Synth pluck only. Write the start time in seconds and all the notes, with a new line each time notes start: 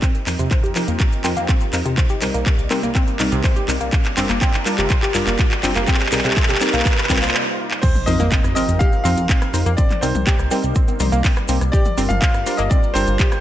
0.27 F3 C4 D#4 A#4
0.76 F3 C4 D#4 A#4
1.24 F3 C4 D#4 A#4
1.73 F3 C4 D#4 A#4
2.22 G3 C4 D#4 A#4
2.71 G3 C4 D#4 A#4
3.20 G3 C4 D#4 A#4
3.68 G3 C4 D#4 A#4
4.17 G3 D4 F4 A#4
4.66 G3 D4 F4 A#4
5.15 G3 D4 F4 A#4
5.63 G3 D4 F4 A#4
6.12 G3 C4 D#4 A#4
6.61 G3 C4 D#4 A#4
7.10 G3 C4 D#4 A#4
8.07 F3 C4 D#4 A#4
8.56 F3 C4 D#4 A#4
9.05 F3 C4 D#4 A#4
9.54 F3 C4 D#4 A#4
10.03 G3 C4 D#4 A#4
10.51 G3 C4 D#4 A#4
11.00 G3 C4 D#4 A#4
11.49 G3 C4 D#4 A#4
11.98 G3 D4 F4 A#4
12.46 G3 D4 F4 A#4
12.95 G3 D4 F4 A#4